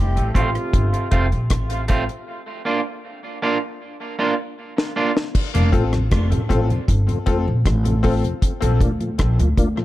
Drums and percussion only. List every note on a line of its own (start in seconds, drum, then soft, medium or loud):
0.17 closed hi-hat soft
0.35 kick medium
0.35 closed hi-hat medium
0.55 closed hi-hat soft
0.73 kick loud
0.73 closed hi-hat medium
0.94 closed hi-hat soft
1.12 kick medium
1.12 closed hi-hat medium
1.32 closed hi-hat soft
1.50 kick loud
1.50 cross-stick medium
1.50 closed hi-hat medium
1.70 closed hi-hat soft
1.88 kick medium
1.88 closed hi-hat medium
2.09 closed hi-hat soft
4.78 snare medium
5.17 snare medium
5.35 kick loud
5.35 crash medium
5.55 closed hi-hat medium
5.73 kick medium
5.73 closed hi-hat medium
5.93 cross-stick medium
5.93 closed hi-hat soft
6.11 kick loud
6.11 cross-stick loud
6.11 closed hi-hat medium
6.32 closed hi-hat soft
6.50 kick medium
6.50 cross-stick medium
6.50 closed hi-hat medium
6.70 closed hi-hat soft
6.88 kick loud
6.88 closed hi-hat medium
7.09 closed hi-hat soft
7.26 kick medium
7.26 closed hi-hat medium
7.66 kick loud
7.66 cross-stick loud
7.66 closed hi-hat medium
7.85 closed hi-hat medium
8.04 kick medium
8.04 open hi-hat medium
8.24 closed hi-hat soft
8.42 kick loud
8.42 closed hi-hat medium
8.62 closed hi-hat medium
8.81 kick medium
8.81 closed hi-hat medium
9.01 closed hi-hat soft
9.19 kick loud
9.19 cross-stick loud
9.19 closed hi-hat medium
9.39 closed hi-hat medium
9.57 kick medium
9.57 closed hi-hat medium